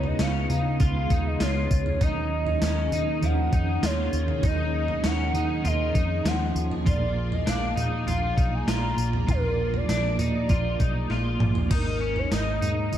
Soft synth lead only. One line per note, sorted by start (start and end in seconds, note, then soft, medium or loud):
0.07 0.23 D#5 medium
0.22 0.81 F5 loud
0.82 1.28 F5 loud
1.27 1.44 D#5 medium
1.42 2.04 C#5 medium
2.03 3.26 D#5 loud
3.25 3.86 F#5 loud
3.85 4.48 C#5 loud
4.46 5.08 D#5 loud
5.06 5.68 F#5 loud
5.67 6.29 D#5 loud
6.27 6.72 F#5 loud
6.87 7.34 D5 loud
7.33 7.49 D#5 medium
7.48 8.08 F5 loud
8.08 8.56 F5 loud
8.54 8.69 G#5 loud
8.68 9.31 A#5 loud
9.30 9.78 A#4 loud
9.76 10.21 D5 loud
10.22 11.38 D5 loud
11.74 12.20 A#4 loud
12.19 12.35 C#5 medium
12.34 12.93 D#5 medium
12.94 12.98 D#5 loud